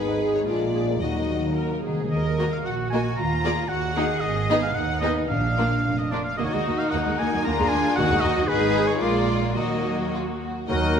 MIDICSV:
0, 0, Header, 1, 13, 480
1, 0, Start_track
1, 0, Key_signature, -6, "minor"
1, 0, Tempo, 546448
1, 887, Time_signature, 2, 2, 24, 8
1, 2337, Tempo, 525855
1, 4257, Tempo, 542495
1, 6177, Tempo, 520382
1, 8097, Tempo, 556070
1, 9807, End_track
2, 0, Start_track
2, 0, Title_t, "Oboe"
2, 0, Program_c, 0, 68
2, 1855, Note_on_c, 0, 75, 60
2, 2226, Note_on_c, 0, 77, 65
2, 2239, Note_off_c, 0, 75, 0
2, 2334, Note_on_c, 0, 78, 71
2, 2348, Note_off_c, 0, 77, 0
2, 2550, Note_off_c, 0, 78, 0
2, 2556, Note_on_c, 0, 80, 77
2, 2669, Note_off_c, 0, 80, 0
2, 2797, Note_on_c, 0, 82, 84
2, 3274, Note_on_c, 0, 78, 86
2, 3287, Note_off_c, 0, 82, 0
2, 3748, Note_on_c, 0, 75, 92
2, 3762, Note_off_c, 0, 78, 0
2, 4120, Note_off_c, 0, 75, 0
2, 4126, Note_on_c, 0, 77, 84
2, 4240, Note_on_c, 0, 78, 87
2, 4254, Note_off_c, 0, 77, 0
2, 4465, Note_off_c, 0, 78, 0
2, 4470, Note_on_c, 0, 75, 88
2, 4584, Note_off_c, 0, 75, 0
2, 4724, Note_on_c, 0, 77, 86
2, 5321, Note_off_c, 0, 77, 0
2, 5335, Note_on_c, 0, 75, 66
2, 5454, Note_on_c, 0, 74, 77
2, 5467, Note_off_c, 0, 75, 0
2, 5559, Note_off_c, 0, 74, 0
2, 5564, Note_on_c, 0, 77, 70
2, 5675, Note_off_c, 0, 77, 0
2, 5680, Note_on_c, 0, 75, 83
2, 5746, Note_on_c, 0, 73, 67
2, 5759, Note_off_c, 0, 75, 0
2, 5824, Note_on_c, 0, 75, 81
2, 5837, Note_off_c, 0, 73, 0
2, 6045, Note_on_c, 0, 77, 81
2, 6058, Note_off_c, 0, 75, 0
2, 6149, Note_off_c, 0, 77, 0
2, 6155, Note_on_c, 0, 78, 85
2, 6409, Note_on_c, 0, 80, 97
2, 6423, Note_off_c, 0, 78, 0
2, 6640, Note_off_c, 0, 80, 0
2, 6645, Note_on_c, 0, 82, 92
2, 6873, Note_on_c, 0, 80, 102
2, 6887, Note_off_c, 0, 82, 0
2, 7115, Note_off_c, 0, 80, 0
2, 7121, Note_on_c, 0, 78, 105
2, 7350, Note_on_c, 0, 75, 110
2, 7364, Note_off_c, 0, 78, 0
2, 7603, Note_on_c, 0, 71, 96
2, 7617, Note_off_c, 0, 75, 0
2, 7965, Note_on_c, 0, 73, 80
2, 7979, Note_off_c, 0, 71, 0
2, 8097, Note_on_c, 0, 74, 90
2, 8110, Note_off_c, 0, 73, 0
2, 8404, Note_off_c, 0, 74, 0
2, 8570, Note_on_c, 0, 75, 67
2, 9028, Note_off_c, 0, 75, 0
2, 9539, Note_on_c, 0, 70, 69
2, 9807, Note_off_c, 0, 70, 0
2, 9807, End_track
3, 0, Start_track
3, 0, Title_t, "Violin section"
3, 0, Program_c, 1, 48
3, 0, Note_on_c, 1, 71, 74
3, 282, Note_off_c, 1, 71, 0
3, 303, Note_on_c, 1, 73, 65
3, 347, Note_off_c, 1, 73, 0
3, 417, Note_on_c, 1, 74, 74
3, 884, Note_off_c, 1, 74, 0
3, 893, Note_on_c, 1, 75, 63
3, 1378, Note_off_c, 1, 75, 0
3, 1862, Note_on_c, 1, 75, 63
3, 2194, Note_off_c, 1, 75, 0
3, 2214, Note_on_c, 1, 77, 57
3, 2262, Note_off_c, 1, 77, 0
3, 2341, Note_on_c, 1, 78, 60
3, 2414, Note_off_c, 1, 78, 0
3, 2590, Note_on_c, 1, 80, 63
3, 2811, Note_on_c, 1, 82, 77
3, 2820, Note_off_c, 1, 80, 0
3, 3282, Note_off_c, 1, 82, 0
3, 3293, Note_on_c, 1, 78, 80
3, 3763, Note_off_c, 1, 78, 0
3, 3774, Note_on_c, 1, 75, 83
3, 4128, Note_on_c, 1, 77, 72
3, 4136, Note_off_c, 1, 75, 0
3, 4253, Note_off_c, 1, 77, 0
3, 4257, Note_on_c, 1, 78, 81
3, 4490, Note_on_c, 1, 75, 69
3, 4493, Note_off_c, 1, 78, 0
3, 4561, Note_off_c, 1, 75, 0
3, 4722, Note_on_c, 1, 77, 69
3, 5320, Note_off_c, 1, 77, 0
3, 5330, Note_on_c, 1, 75, 58
3, 5454, Note_off_c, 1, 75, 0
3, 5456, Note_on_c, 1, 74, 57
3, 5505, Note_off_c, 1, 74, 0
3, 5584, Note_on_c, 1, 77, 69
3, 5699, Note_on_c, 1, 75, 68
3, 5700, Note_off_c, 1, 77, 0
3, 6044, Note_on_c, 1, 77, 69
3, 6051, Note_off_c, 1, 75, 0
3, 6094, Note_off_c, 1, 77, 0
3, 6159, Note_on_c, 1, 78, 80
3, 6232, Note_off_c, 1, 78, 0
3, 6409, Note_on_c, 1, 80, 77
3, 6644, Note_on_c, 1, 82, 87
3, 6650, Note_off_c, 1, 80, 0
3, 6887, Note_on_c, 1, 80, 95
3, 6891, Note_off_c, 1, 82, 0
3, 7130, Note_off_c, 1, 80, 0
3, 7132, Note_on_c, 1, 78, 95
3, 7357, Note_on_c, 1, 75, 91
3, 7366, Note_off_c, 1, 78, 0
3, 7602, Note_off_c, 1, 75, 0
3, 7603, Note_on_c, 1, 71, 93
3, 7951, Note_on_c, 1, 73, 77
3, 7962, Note_off_c, 1, 71, 0
3, 8081, Note_on_c, 1, 74, 81
3, 8086, Note_off_c, 1, 73, 0
3, 8557, Note_off_c, 1, 74, 0
3, 8566, Note_on_c, 1, 75, 64
3, 9051, Note_off_c, 1, 75, 0
3, 9539, Note_on_c, 1, 75, 92
3, 9807, Note_off_c, 1, 75, 0
3, 9807, End_track
4, 0, Start_track
4, 0, Title_t, "Trumpet section"
4, 0, Program_c, 2, 61
4, 9544, Note_on_c, 2, 70, 75
4, 9807, Note_off_c, 2, 70, 0
4, 9807, End_track
5, 0, Start_track
5, 0, Title_t, "Flute"
5, 0, Program_c, 3, 73
5, 9539, Note_on_c, 3, 66, 82
5, 9807, Note_off_c, 3, 66, 0
5, 9807, End_track
6, 0, Start_track
6, 0, Title_t, "Violin section"
6, 0, Program_c, 4, 48
6, 62, Note_on_c, 4, 71, 54
6, 63, Note_on_c, 4, 63, 47
6, 172, Note_on_c, 4, 68, 58
6, 174, Note_off_c, 4, 63, 0
6, 174, Note_off_c, 4, 71, 0
6, 182, Note_on_c, 4, 59, 52
6, 288, Note_off_c, 4, 68, 0
6, 293, Note_off_c, 4, 59, 0
6, 303, Note_on_c, 4, 63, 51
6, 305, Note_on_c, 4, 71, 52
6, 413, Note_off_c, 4, 63, 0
6, 414, Note_off_c, 4, 71, 0
6, 417, Note_on_c, 4, 68, 56
6, 420, Note_on_c, 4, 62, 53
6, 523, Note_off_c, 4, 68, 0
6, 524, Note_off_c, 4, 62, 0
6, 541, Note_on_c, 4, 58, 45
6, 541, Note_on_c, 4, 70, 45
6, 653, Note_off_c, 4, 58, 0
6, 653, Note_off_c, 4, 70, 0
6, 655, Note_on_c, 4, 68, 40
6, 657, Note_on_c, 4, 62, 42
6, 771, Note_off_c, 4, 68, 0
6, 772, Note_off_c, 4, 62, 0
6, 790, Note_on_c, 4, 58, 45
6, 793, Note_on_c, 4, 70, 46
6, 900, Note_off_c, 4, 58, 0
6, 901, Note_off_c, 4, 70, 0
6, 902, Note_on_c, 4, 66, 47
6, 909, Note_on_c, 4, 63, 45
6, 1009, Note_off_c, 4, 66, 0
6, 1013, Note_off_c, 4, 63, 0
6, 1031, Note_on_c, 4, 63, 42
6, 1035, Note_on_c, 4, 58, 40
6, 1142, Note_off_c, 4, 63, 0
6, 1145, Note_off_c, 4, 58, 0
6, 1155, Note_on_c, 4, 66, 47
6, 1158, Note_on_c, 4, 63, 41
6, 1265, Note_off_c, 4, 66, 0
6, 1267, Note_off_c, 4, 63, 0
6, 1276, Note_on_c, 4, 63, 40
6, 1278, Note_on_c, 4, 58, 38
6, 1387, Note_off_c, 4, 63, 0
6, 1388, Note_off_c, 4, 58, 0
6, 1406, Note_on_c, 4, 63, 47
6, 1411, Note_on_c, 4, 66, 43
6, 1499, Note_off_c, 4, 63, 0
6, 1505, Note_on_c, 4, 58, 38
6, 1508, Note_off_c, 4, 66, 0
6, 1510, Note_on_c, 4, 63, 40
6, 1615, Note_off_c, 4, 63, 0
6, 1622, Note_on_c, 4, 66, 34
6, 1625, Note_off_c, 4, 58, 0
6, 1626, Note_on_c, 4, 63, 36
6, 1744, Note_off_c, 4, 66, 0
6, 1746, Note_off_c, 4, 63, 0
6, 1757, Note_on_c, 4, 58, 40
6, 1758, Note_on_c, 4, 63, 42
6, 1871, Note_off_c, 4, 58, 0
6, 1871, Note_off_c, 4, 63, 0
6, 2105, Note_on_c, 4, 70, 61
6, 2106, Note_on_c, 4, 75, 60
6, 2214, Note_off_c, 4, 70, 0
6, 2214, Note_off_c, 4, 75, 0
6, 2578, Note_on_c, 4, 75, 50
6, 2584, Note_on_c, 4, 70, 52
6, 2691, Note_off_c, 4, 75, 0
6, 2693, Note_off_c, 4, 70, 0
6, 3052, Note_on_c, 4, 74, 63
6, 3054, Note_on_c, 4, 68, 70
6, 3166, Note_off_c, 4, 74, 0
6, 3167, Note_off_c, 4, 68, 0
6, 3540, Note_on_c, 4, 66, 54
6, 3540, Note_on_c, 4, 75, 57
6, 3649, Note_off_c, 4, 66, 0
6, 3649, Note_off_c, 4, 75, 0
6, 4019, Note_on_c, 4, 75, 76
6, 4020, Note_on_c, 4, 68, 76
6, 4129, Note_off_c, 4, 75, 0
6, 4130, Note_off_c, 4, 68, 0
6, 4490, Note_on_c, 4, 75, 54
6, 4493, Note_on_c, 4, 68, 60
6, 4603, Note_off_c, 4, 75, 0
6, 4604, Note_off_c, 4, 68, 0
6, 4972, Note_on_c, 4, 65, 62
6, 4979, Note_on_c, 4, 70, 61
6, 5087, Note_off_c, 4, 65, 0
6, 5090, Note_off_c, 4, 70, 0
6, 5461, Note_on_c, 4, 65, 43
6, 5463, Note_on_c, 4, 70, 53
6, 5572, Note_off_c, 4, 65, 0
6, 5573, Note_off_c, 4, 70, 0
6, 5702, Note_on_c, 4, 70, 64
6, 5703, Note_on_c, 4, 66, 59
6, 6626, Note_off_c, 4, 66, 0
6, 6665, Note_on_c, 4, 68, 73
6, 7137, Note_on_c, 4, 66, 84
6, 7138, Note_off_c, 4, 68, 0
6, 7574, Note_off_c, 4, 70, 0
6, 7610, Note_off_c, 4, 66, 0
6, 7617, Note_on_c, 4, 71, 78
6, 7621, Note_on_c, 4, 68, 83
6, 8067, Note_off_c, 4, 71, 0
6, 8069, Note_off_c, 4, 68, 0
6, 8101, Note_on_c, 4, 70, 73
6, 8107, Note_on_c, 4, 65, 81
6, 8570, Note_off_c, 4, 70, 0
6, 8576, Note_on_c, 4, 63, 66
6, 8579, Note_off_c, 4, 65, 0
6, 8580, Note_on_c, 4, 70, 53
6, 9011, Note_off_c, 4, 70, 0
6, 9017, Note_off_c, 4, 63, 0
6, 9072, Note_on_c, 4, 65, 68
6, 9141, Note_off_c, 4, 65, 0
6, 9319, Note_on_c, 4, 66, 51
6, 9547, Note_off_c, 4, 66, 0
6, 9568, Note_on_c, 4, 66, 80
6, 9807, Note_off_c, 4, 66, 0
6, 9807, End_track
7, 0, Start_track
7, 0, Title_t, "Cello section"
7, 0, Program_c, 5, 48
7, 0, Note_on_c, 5, 44, 65
7, 395, Note_off_c, 5, 44, 0
7, 395, Note_on_c, 5, 46, 53
7, 873, Note_off_c, 5, 46, 0
7, 880, Note_on_c, 5, 39, 56
7, 1678, Note_off_c, 5, 39, 0
7, 1858, Note_on_c, 5, 70, 69
7, 2301, Note_off_c, 5, 70, 0
7, 2332, Note_on_c, 5, 66, 60
7, 2807, Note_off_c, 5, 66, 0
7, 2817, Note_on_c, 5, 65, 70
7, 3290, Note_on_c, 5, 66, 67
7, 3295, Note_off_c, 5, 65, 0
7, 3527, Note_off_c, 5, 66, 0
7, 3528, Note_on_c, 5, 68, 74
7, 4253, Note_off_c, 5, 68, 0
7, 4257, Note_on_c, 5, 63, 68
7, 4725, Note_off_c, 5, 63, 0
7, 4733, Note_on_c, 5, 62, 62
7, 5444, Note_off_c, 5, 62, 0
7, 5698, Note_on_c, 5, 66, 68
7, 6142, Note_off_c, 5, 66, 0
7, 6172, Note_on_c, 5, 63, 62
7, 6656, Note_on_c, 5, 65, 84
7, 6658, Note_off_c, 5, 63, 0
7, 7124, Note_off_c, 5, 65, 0
7, 7130, Note_on_c, 5, 66, 79
7, 7607, Note_off_c, 5, 66, 0
7, 7608, Note_on_c, 5, 68, 100
7, 8086, Note_off_c, 5, 68, 0
7, 8092, Note_on_c, 5, 65, 79
7, 8562, Note_off_c, 5, 65, 0
7, 8569, Note_on_c, 5, 66, 59
7, 9291, Note_off_c, 5, 66, 0
7, 9541, Note_on_c, 5, 39, 87
7, 9807, Note_off_c, 5, 39, 0
7, 9807, End_track
8, 0, Start_track
8, 0, Title_t, "Clarinet"
8, 0, Program_c, 6, 71
8, 9534, Note_on_c, 6, 63, 74
8, 9807, Note_off_c, 6, 63, 0
8, 9807, End_track
9, 0, Start_track
9, 0, Title_t, "French horn section"
9, 0, Program_c, 7, 60
9, 0, Note_on_c, 7, 56, 67
9, 0, Note_on_c, 7, 63, 66
9, 381, Note_off_c, 7, 56, 0
9, 381, Note_off_c, 7, 63, 0
9, 405, Note_on_c, 7, 65, 55
9, 409, Note_on_c, 7, 56, 51
9, 880, Note_off_c, 7, 56, 0
9, 887, Note_off_c, 7, 65, 0
9, 889, Note_on_c, 7, 63, 59
9, 898, Note_on_c, 7, 54, 55
9, 1607, Note_off_c, 7, 63, 0
9, 1627, Note_off_c, 7, 54, 0
9, 9559, Note_on_c, 7, 54, 80
9, 9567, Note_on_c, 7, 63, 75
9, 9807, Note_off_c, 7, 54, 0
9, 9807, Note_off_c, 7, 63, 0
9, 9807, End_track
10, 0, Start_track
10, 0, Title_t, "Viola section"
10, 0, Program_c, 8, 48
10, 0, Note_on_c, 8, 68, 66
10, 397, Note_off_c, 8, 68, 0
10, 416, Note_on_c, 8, 65, 54
10, 650, Note_off_c, 8, 65, 0
10, 650, Note_on_c, 8, 68, 53
10, 721, Note_off_c, 8, 68, 0
10, 898, Note_on_c, 8, 66, 54
10, 1323, Note_off_c, 8, 66, 0
10, 1377, Note_on_c, 8, 70, 47
10, 1605, Note_off_c, 8, 70, 0
10, 1618, Note_on_c, 8, 68, 55
10, 1857, Note_off_c, 8, 68, 0
10, 2092, Note_on_c, 8, 58, 51
10, 2095, Note_on_c, 8, 66, 51
10, 2207, Note_off_c, 8, 58, 0
10, 2208, Note_off_c, 8, 66, 0
10, 2573, Note_on_c, 8, 58, 55
10, 2578, Note_on_c, 8, 66, 59
10, 2687, Note_off_c, 8, 58, 0
10, 2690, Note_off_c, 8, 66, 0
10, 3052, Note_on_c, 8, 65, 66
10, 3056, Note_on_c, 8, 58, 59
10, 3166, Note_off_c, 8, 65, 0
10, 3167, Note_off_c, 8, 58, 0
10, 3530, Note_on_c, 8, 63, 75
10, 3532, Note_on_c, 8, 58, 66
10, 3643, Note_off_c, 8, 63, 0
10, 3645, Note_off_c, 8, 58, 0
10, 4011, Note_on_c, 8, 59, 70
10, 4013, Note_on_c, 8, 63, 69
10, 4125, Note_off_c, 8, 59, 0
10, 4126, Note_off_c, 8, 63, 0
10, 4482, Note_on_c, 8, 63, 72
10, 4485, Note_on_c, 8, 59, 69
10, 4598, Note_off_c, 8, 63, 0
10, 4600, Note_off_c, 8, 59, 0
10, 4982, Note_on_c, 8, 58, 57
10, 4983, Note_on_c, 8, 62, 56
10, 5092, Note_off_c, 8, 58, 0
10, 5093, Note_off_c, 8, 62, 0
10, 5456, Note_on_c, 8, 62, 54
10, 5457, Note_on_c, 8, 58, 55
10, 5569, Note_off_c, 8, 62, 0
10, 5570, Note_off_c, 8, 58, 0
10, 5696, Note_on_c, 8, 58, 82
10, 5700, Note_on_c, 8, 63, 71
10, 5745, Note_off_c, 8, 58, 0
10, 5819, Note_on_c, 8, 56, 45
10, 5867, Note_off_c, 8, 56, 0
10, 5940, Note_on_c, 8, 58, 49
10, 5988, Note_off_c, 8, 58, 0
10, 6175, Note_on_c, 8, 58, 74
10, 6225, Note_off_c, 8, 58, 0
10, 6291, Note_on_c, 8, 56, 55
10, 6341, Note_off_c, 8, 56, 0
10, 6416, Note_on_c, 8, 58, 68
10, 6465, Note_off_c, 8, 58, 0
10, 6539, Note_on_c, 8, 54, 72
10, 6587, Note_off_c, 8, 54, 0
10, 6624, Note_off_c, 8, 63, 0
10, 6656, Note_on_c, 8, 62, 74
10, 6661, Note_on_c, 8, 58, 91
10, 6709, Note_off_c, 8, 58, 0
10, 6784, Note_on_c, 8, 56, 62
10, 6831, Note_off_c, 8, 56, 0
10, 6898, Note_on_c, 8, 58, 64
10, 6946, Note_off_c, 8, 58, 0
10, 7134, Note_off_c, 8, 62, 0
10, 7138, Note_on_c, 8, 58, 86
10, 7141, Note_on_c, 8, 63, 73
10, 7185, Note_off_c, 8, 58, 0
10, 7257, Note_on_c, 8, 56, 67
10, 7303, Note_off_c, 8, 56, 0
10, 7379, Note_on_c, 8, 58, 75
10, 7425, Note_off_c, 8, 58, 0
10, 7492, Note_on_c, 8, 54, 72
10, 7539, Note_off_c, 8, 54, 0
10, 7604, Note_off_c, 8, 63, 0
10, 7616, Note_on_c, 8, 56, 76
10, 7616, Note_on_c, 8, 63, 80
10, 8066, Note_off_c, 8, 56, 0
10, 8066, Note_off_c, 8, 63, 0
10, 8102, Note_on_c, 8, 56, 64
10, 8102, Note_on_c, 8, 58, 64
10, 8561, Note_off_c, 8, 58, 0
10, 8567, Note_off_c, 8, 56, 0
10, 8570, Note_on_c, 8, 54, 69
10, 8571, Note_on_c, 8, 58, 67
10, 9351, Note_off_c, 8, 58, 0
10, 9366, Note_off_c, 8, 54, 0
10, 9545, Note_on_c, 8, 58, 66
10, 9548, Note_on_c, 8, 66, 67
10, 9614, Note_off_c, 8, 58, 0
10, 9617, Note_off_c, 8, 66, 0
10, 9780, Note_on_c, 8, 58, 60
10, 9807, Note_off_c, 8, 58, 0
10, 9807, End_track
11, 0, Start_track
11, 0, Title_t, "Bassoon"
11, 0, Program_c, 10, 70
11, 9550, Note_on_c, 10, 54, 63
11, 9807, Note_off_c, 10, 54, 0
11, 9807, End_track
12, 0, Start_track
12, 0, Title_t, "Timpani"
12, 0, Program_c, 11, 47
12, 893, Note_on_c, 11, 51, 25
12, 950, Note_off_c, 11, 51, 0
12, 961, Note_on_c, 11, 51, 28
12, 1020, Note_off_c, 11, 51, 0
12, 1030, Note_on_c, 11, 51, 31
12, 1092, Note_off_c, 11, 51, 0
12, 1108, Note_on_c, 11, 51, 30
12, 1159, Note_off_c, 11, 51, 0
12, 1170, Note_on_c, 11, 51, 35
12, 1231, Note_off_c, 11, 51, 0
12, 1243, Note_on_c, 11, 51, 37
12, 1302, Note_off_c, 11, 51, 0
12, 1312, Note_on_c, 11, 51, 34
12, 1371, Note_off_c, 11, 51, 0
12, 1387, Note_on_c, 11, 51, 39
12, 1443, Note_off_c, 11, 51, 0
12, 1453, Note_on_c, 11, 51, 50
12, 1508, Note_off_c, 11, 51, 0
12, 1518, Note_on_c, 11, 51, 44
12, 1578, Note_off_c, 11, 51, 0
12, 1591, Note_on_c, 11, 51, 50
12, 1648, Note_off_c, 11, 51, 0
12, 1658, Note_on_c, 11, 51, 56
12, 1714, Note_off_c, 11, 51, 0
12, 1724, Note_on_c, 11, 51, 58
12, 1781, Note_off_c, 11, 51, 0
12, 1791, Note_on_c, 11, 51, 65
12, 1852, Note_off_c, 11, 51, 0
12, 2820, Note_on_c, 11, 51, 66
12, 3263, Note_off_c, 11, 51, 0
12, 4740, Note_on_c, 11, 46, 66
12, 5426, Note_off_c, 11, 46, 0
12, 9807, End_track
13, 0, Start_track
13, 0, Title_t, "Double bass section"
13, 0, Program_c, 12, 48
13, 0, Note_on_c, 12, 32, 59
13, 398, Note_off_c, 12, 32, 0
13, 409, Note_on_c, 12, 34, 64
13, 879, Note_off_c, 12, 34, 0
13, 890, Note_on_c, 12, 39, 54
13, 1683, Note_off_c, 12, 39, 0
13, 1865, Note_on_c, 12, 39, 64
13, 2260, Note_off_c, 12, 39, 0
13, 2340, Note_on_c, 12, 34, 56
13, 2740, Note_off_c, 12, 34, 0
13, 2819, Note_on_c, 12, 39, 62
13, 3216, Note_off_c, 12, 39, 0
13, 3294, Note_on_c, 12, 39, 65
13, 3693, Note_off_c, 12, 39, 0
13, 3776, Note_on_c, 12, 32, 81
13, 4177, Note_off_c, 12, 32, 0
13, 4252, Note_on_c, 12, 39, 78
13, 4651, Note_off_c, 12, 39, 0
13, 4734, Note_on_c, 12, 34, 72
13, 5138, Note_off_c, 12, 34, 0
13, 5215, Note_on_c, 12, 29, 59
13, 5618, Note_off_c, 12, 29, 0
13, 5702, Note_on_c, 12, 39, 71
13, 5750, Note_off_c, 12, 39, 0
13, 5830, Note_on_c, 12, 39, 51
13, 5876, Note_off_c, 12, 39, 0
13, 5947, Note_on_c, 12, 39, 60
13, 5993, Note_off_c, 12, 39, 0
13, 6178, Note_on_c, 12, 39, 75
13, 6227, Note_off_c, 12, 39, 0
13, 6308, Note_on_c, 12, 39, 58
13, 6355, Note_off_c, 12, 39, 0
13, 6431, Note_on_c, 12, 39, 58
13, 6477, Note_off_c, 12, 39, 0
13, 6556, Note_on_c, 12, 39, 50
13, 6601, Note_off_c, 12, 39, 0
13, 6675, Note_on_c, 12, 39, 91
13, 6720, Note_off_c, 12, 39, 0
13, 6791, Note_on_c, 12, 39, 61
13, 6837, Note_off_c, 12, 39, 0
13, 6916, Note_on_c, 12, 39, 79
13, 6960, Note_off_c, 12, 39, 0
13, 7149, Note_on_c, 12, 39, 93
13, 7194, Note_off_c, 12, 39, 0
13, 7260, Note_on_c, 12, 39, 72
13, 7306, Note_off_c, 12, 39, 0
13, 7376, Note_on_c, 12, 39, 67
13, 7423, Note_off_c, 12, 39, 0
13, 7502, Note_on_c, 12, 39, 58
13, 7547, Note_off_c, 12, 39, 0
13, 7615, Note_on_c, 12, 32, 74
13, 8065, Note_off_c, 12, 32, 0
13, 8102, Note_on_c, 12, 34, 73
13, 8567, Note_off_c, 12, 34, 0
13, 8583, Note_on_c, 12, 39, 63
13, 9372, Note_off_c, 12, 39, 0
13, 9548, Note_on_c, 12, 39, 85
13, 9807, Note_off_c, 12, 39, 0
13, 9807, End_track
0, 0, End_of_file